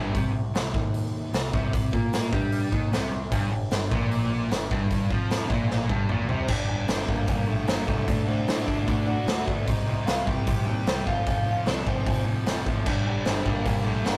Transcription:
Already playing: overdriven electric guitar G2 D3 G3
0.14 picked electric bass C2, overdriven electric guitar C3, kick, open hi-hat
0.33 picked electric bass C2, overdriven electric guitar C3
0.54 picked electric bass C2, overdriven electric guitar C3, snare, open hi-hat
0.73 picked electric bass D#2, overdriven electric guitar D#3, kick
0.94 open hi-hat
1.33 picked electric bass C2, overdriven electric guitar C3, snare, open hi-hat
1.53 picked electric bass C2, overdriven electric guitar C3, kick
1.73 kick, open hi-hat
1.92 picked electric bass A#2, overdriven electric guitar A#3, kick
2.13 snare, open hi-hat
2.32 picked electric bass G2, overdriven electric guitar G3, kick
2.52 open hi-hat
2.72 picked electric bass D#2, overdriven electric guitar D#3, kick
2.92 picked electric bass C2, overdriven electric guitar C3, snare, open hi-hat
3.11 picked electric bass C2, overdriven electric guitar C3
3.31 picked electric bass G1, overdriven electric guitar G2, kick, open hi-hat
3.51 picked electric bass G1, overdriven electric guitar G2
3.71 picked electric bass G1, overdriven electric guitar G2, snare, open hi-hat
3.91 picked electric bass A#1, overdriven electric guitar A#2, kick
4.11 open hi-hat
4.51 picked electric bass G1, overdriven electric guitar G2, snare, open hi-hat
4.71 picked electric bass G1, overdriven electric guitar G2, kick
4.91 kick, open hi-hat
5.10 picked electric bass F2, overdriven electric guitar F3, kick
5.31 snare, open hi-hat
5.49 picked electric bass A#1, overdriven electric guitar A#2, kick
5.71 snare
5.89 picked electric bass G1, overdriven electric guitar G2, kick
6.09 picked electric bass A#1, overdriven electric guitar A#2, mid tom
6.29 picked electric bass C2, overdriven electric guitar C3, floor tom
6.42 lead electric guitar C5
6.48 picked electric bass G1, overdriven electric guitar G2 D3 G3, lead electric guitar D4 D5, kick, crash
6.68 picked electric bass G1, overdriven electric guitar G2 D3 G3
6.87 picked electric bass G1, overdriven electric guitar G2 D3 G3, lead electric guitar C4 C5, snare, open hi-hat
7.07 picked electric bass G1, overdriven electric guitar G2 D3 G3, lead electric guitar A#3 A#4, kick
7.27 picked electric bass F1, overdriven electric guitar G2 D3 G3, lead electric guitar A#3 A#4, kick, open hi-hat
7.47 picked electric bass A#1, overdriven electric guitar G2 D3 G3, lead electric guitar A3 A4
7.67 picked electric bass G1, overdriven electric guitar G2 D3 G3, lead electric guitar A#3 A#4, snare, open hi-hat
7.87 picked electric bass C2, overdriven electric guitar G2 D3 G3, lead electric guitar A3 A4, kick
8.07 picked electric bass D2, overdriven electric guitar D3 A3 D4, kick, open hi-hat
8.27 picked electric bass D2, overdriven electric guitar D3 A3 D4, lead electric guitar C4 C5
8.48 picked electric bass A2, overdriven electric guitar D3 A3 D4, snare, open hi-hat
8.66 picked electric bass D2, overdriven electric guitar D3 A3 D4, lead electric guitar D4 D5, kick
8.87 picked electric bass D2, overdriven electric guitar D3 A3 D4, lead electric guitar D4 D5, kick, open hi-hat
9.07 overdriven electric guitar D3 A3 D4, lead electric guitar F#4 F#5
9.26 picked electric bass D2, overdriven electric guitar D3 A3 D4, snare, open hi-hat
9.47 picked electric bass D2, overdriven electric guitar D3 A3 D4, kick
9.66 picked electric bass C2, overdriven electric guitar C3 G3 C4, lead electric guitar D#4 D#5, kick, open hi-hat
9.87 picked electric bass C2, overdriven electric guitar C3 G3 C4
10.06 picked electric bass C2, overdriven electric guitar C3 G3 C4, lead electric guitar F4 F5, snare, open hi-hat
10.26 picked electric bass C2, overdriven electric guitar C3 G3 C4, lead electric guitar G4 G5, kick
10.47 picked electric bass A#1, overdriven electric guitar C3 G3 C4, kick, open hi-hat
10.66 picked electric bass D#2, overdriven electric guitar C3 G3 C4, lead electric guitar G4 G5
10.87 picked electric bass C2, overdriven electric guitar C3 G3 C4, snare, open hi-hat
11.06 picked electric bass F1, overdriven electric guitar F2 C3 F3, lead electric guitar F4 F5, kick
11.27 picked electric bass F1, overdriven electric guitar F2 C3 F3, kick, open hi-hat
11.46 picked electric bass F1, overdriven electric guitar F2 C3 F3
11.66 picked electric bass C2, overdriven electric guitar F2 C3 F3, lead electric guitar D4 D5, snare, open hi-hat
11.86 picked electric bass F1, overdriven electric guitar F2 C3 F3, lead electric guitar C4 C5, kick
12.06 picked electric bass F1, overdriven electric guitar F2 C3 F3, kick, open hi-hat
12.26 overdriven electric guitar F2 C3 F3
12.46 picked electric bass F1, overdriven electric guitar F2 C3 F3, snare, open hi-hat
12.66 picked electric bass A1, overdriven electric guitar F2 C3 F3, kick
12.86 picked electric bass G1, overdriven electric guitar G2 D3 G3, lead electric guitar D4 D5, kick, crash
13.06 picked electric bass G1, overdriven electric guitar G2 D3 G3
13.25 picked electric bass G1, overdriven electric guitar G2 D3 G3, lead electric guitar C4 C5, snare, open hi-hat
13.45 picked electric bass G1, overdriven electric guitar G2 D3 G3, lead electric guitar A#3 A#4, kick
13.65 picked electric bass F1, overdriven electric guitar G2 D3 G3, kick, open hi-hat
13.85 picked electric bass A#1, overdriven electric guitar G2 D3 G3, lead electric guitar A3 A4
14.05 picked electric bass G1, overdriven electric guitar G2 D3 G3, lead electric guitar A#3 A#4, snare, open hi-hat

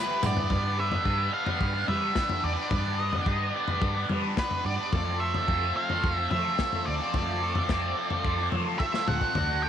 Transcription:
Already playing: overdriven electric guitar G3 B3 E4 G4, lead electric guitar B4, tonewheel organ B4 E5 G5 A5
0.22 fingered electric bass G2, overdriven electric guitar B3, lead electric guitar D5, mid tom, tambourine
0.37 floor tom
0.49 fingered electric bass G2, overdriven electric guitar G3 B3 D4 B4, tonewheel organ B4 D5 G5 B5, kick, floor tom
0.76 overdriven electric guitar G3 B3 D4 B4, lead electric guitar E5
0.90 overdriven electric guitar B3 D4 B4, floor tom
1.03 fingered electric bass G2, overdriven electric guitar G3 B3 D4 B4, kick
1.31 overdriven electric guitar G3 B3 D4 B4, lead electric guitar F5
1.45 overdriven electric guitar B3 D4 B4, floor tom
1.61 fingered electric bass G2, kick
1.74 overdriven electric guitar B3 D4 B4
1.87 overdriven electric guitar G3 B3 D4 B4, fingered electric bass G3, lead electric guitar E5, floor tom
2.01 overdriven electric guitar B3 D4 B4
2.15 overdriven electric guitar G3 B3 D4 B4, kick, snare
2.29 floor tom
2.44 fingered electric bass E2, lead electric guitar D5
2.57 overdriven electric guitar B3 D4 B4
2.71 fingered electric bass G2, overdriven electric guitar G3 B3 D4 B4, tonewheel organ A5, kick, floor tom
2.99 overdriven electric guitar G3 B3 D4 B4, lead electric guitar D#5
3.13 overdriven electric guitar B3 D4 B4, floor tom
3.17 lead electric guitar D5
3.26 fingered electric bass G2, overdriven electric guitar G3 B3 D4 B4, kick
3.34 lead electric guitar D#5
3.49 lead electric guitar D5
3.54 overdriven electric guitar G3 B3 D4 B4
3.68 overdriven electric guitar B3 D4 B4, floor tom
3.82 fingered electric bass G2, kick
3.95 overdriven electric guitar B3 D4 B4
4.09 overdriven electric guitar G3 B3 D4 B4, fingered electric bass G3, floor tom
4.22 overdriven electric guitar B3 D4 B4
4.36 overdriven electric guitar G3 B3 D4 B4, lead electric guitar B4, kick, snare
4.51 floor tom
4.65 fingered electric bass G2, lead electric guitar D5
4.78 overdriven electric guitar B3 D4 B4
4.92 fingered electric bass F2, overdriven electric guitar F3 A3 C4 F4 A4, tonewheel organ F4 A4 C5, kick, floor tom
5.20 overdriven electric guitar A3 C4 F4 A4, lead electric guitar E5
5.34 overdriven electric guitar C4 F4 A4, floor tom
5.47 fingered electric bass F2, overdriven electric guitar F3 A3 C4 F4 A4, kick
5.75 overdriven electric guitar A3 C4 F4 A4, lead electric guitar F5
5.90 overdriven electric guitar C4 F4 A4, floor tom
6.04 fingered electric bass F2, kick
6.14 overdriven electric guitar A4, lead electric guitar E5
6.18 overdriven electric guitar C4 F4
6.31 fingered electric bass F3, overdriven electric guitar A3 C4 F4 A4, lead electric guitar E5, floor tom
6.45 overdriven electric guitar C4 F4 A4
6.58 overdriven electric guitar F3 A3 C4 F4 A4, kick, snare
6.73 floor tom
6.86 fingered electric bass D2, lead electric guitar D5
7.00 overdriven electric guitar C4 F4 A4
7.13 fingered electric bass F2, overdriven electric guitar F3 A3 C4 F4 A4, kick, floor tom
7.41 overdriven electric guitar A3 C4 F4 A4
7.55 overdriven electric guitar C4 F4 A4, floor tom
7.69 fingered electric bass F2, overdriven electric guitar F3 A3 C4 F4 A4, kick, snare
7.97 overdriven electric guitar A3 C4 F4 A4
8.10 overdriven electric guitar C4 F4 A4, floor tom
8.24 fingered electric bass F2, kick
8.38 overdriven electric guitar C4 F4 A4
8.52 fingered electric bass F3, overdriven electric guitar A3 C4 F4 A4, floor tom
8.66 overdriven electric guitar C4 F4 A4
8.79 overdriven electric guitar F3 A3 C4 F4 A4, lead electric guitar E5, kick
8.94 snare
9.08 fingered electric bass D2, lead electric guitar F#5, mid tom
9.21 overdriven electric guitar C4 F4 A4, kick
9.35 fingered electric bass D2, overdriven electric guitar D3 D4 F#4 A4, tonewheel organ D5, kick, floor tom
9.63 overdriven electric guitar D3 D4 F#4 A4, lead electric guitar G5

